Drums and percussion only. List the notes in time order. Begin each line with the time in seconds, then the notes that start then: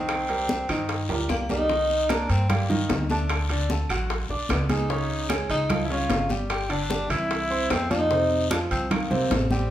0.09 high bongo, high conga, high timbale, long guiro, claves
0.29 high conga, high timbale
0.49 high bongo, high conga, low timbale, short guiro
0.69 high bongo, high conga, high timbale, short guiro, claves
0.89 high bongo, high conga, high timbale, long guiro
1.09 high bongo, high conga, high timbale
1.29 high bongo, low bongo, high conga, short guiro, claves
1.49 high bongo, high conga, low timbale, short guiro
1.70 high bongo, high conga, long guiro
1.90 high conga
2.09 high bongo, high conga, high timbale, low timbale, short guiro, claves
2.30 high conga, high timbale, short guiro
2.49 high bongo, high conga, low conga, high timbale, long guiro, claves
2.70 high conga, low conga
2.89 high bongo, low bongo, high conga, high timbale, low timbale, short guiro
3.10 high conga, short guiro
3.29 high bongo, high conga, high timbale, long guiro, claves
3.49 high conga, high timbale
3.70 high bongo, high conga, low timbale, short guiro
3.89 high bongo, high conga, high timbale, short guiro, claves
4.10 high bongo, high conga, high timbale, long guiro
4.29 high bongo, high conga
4.49 high bongo, low bongo, high conga, high timbale, low timbale, short guiro, claves
4.69 high bongo, high conga, high timbale, short guiro
4.90 high bongo, high conga, long guiro
5.10 high conga
5.29 high bongo, high conga, high timbale, low timbale, short guiro, claves
5.50 high conga, high timbale, short guiro
5.69 high bongo, high conga, low conga, high timbale, long guiro, claves
5.90 high conga
6.10 high bongo, low bongo, high conga, high timbale, low timbale, short guiro
6.29 high conga, short guiro
6.50 high bongo, high conga, high timbale, long guiro, claves
6.70 high conga, high timbale
6.90 high bongo, high conga, low timbale, short guiro
7.10 high bongo, high conga, high timbale, short guiro, claves
7.31 high bongo, high conga, high timbale, long guiro
7.51 high bongo, high conga
7.70 high bongo, low bongo, high conga, high timbale, low timbale, short guiro, claves
7.91 high bongo, high conga, high timbale, short guiro
8.11 high bongo, high conga, long guiro
8.31 high conga
8.51 high bongo, high conga, high timbale, low timbale, short guiro, claves
8.71 high conga, high timbale, short guiro
8.91 high bongo, high conga, low conga, high timbale, long guiro, claves
9.11 high conga, low conga
9.31 high bongo, low bongo, high conga, high timbale, low timbale, short guiro
9.51 high conga, short guiro